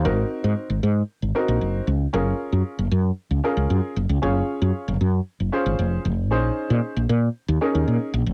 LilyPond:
<<
  \new Staff \with { instrumentName = "Grand piano" } { \time 4/4 \key ges \lydian \tempo 4 = 115 << { <c'' f''>16 r2. r8. | r1 | r1 | r1 | } \\ { <c' ees' ges' bes'>4. r4 <c' ees' ges' bes'>4 r8 | <des' f' aes' bes'>4. r4 <des' f' aes' bes'>4 r8 | <des' f' aes' des''>4. r4 <des' f' aes' c''>4 r8 | <des' ees' aes' c''>4. r4 <des' ees' aes' bes'>4 r8 | } >> }
  \new Staff \with { instrumentName = "Fretless electric bass" } { \clef bass \time 4/4 \key ges \lydian aes,,8 r16 aes,16 r16 aes,,16 aes,8 r16 aes,,16 r16 bes,,16 ges,,8 des,8 | ges,,8 r16 ges,16 r16 ges,,16 ges,8 r16 des,16 r16 des,16 ges,16 r16 ges,,16 des,16 | ges,,8 r16 ges,16 r16 ges,,16 ges,8 r16 ges,,16 r16 aes,,16 f,,8 f,,8 | bes,,8 r16 bes,16 r16 bes,,16 bes,8 r16 ees,16 r16 ees,16 bes,16 r16 bes,,16 f,,16 | }
>>